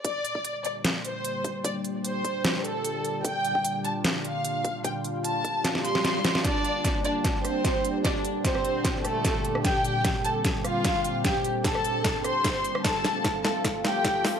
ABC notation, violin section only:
X:1
M:4/4
L:1/8
Q:1/4=150
K:Gm
V:1 name="Violin section"
d3 d z c3 | d z c3 A3 | g3 a z f3 | g z a3 c'3 |
[Dd]3 [Dd] z [Cc]3 | [Dd] z [Cc]3 [A,A]3 | [Gg]3 [Aa] z [Ff]3 | [Gg] z [Aa]3 [cc']3 |
[Aa]3 [Aa] z [Gg]3 |]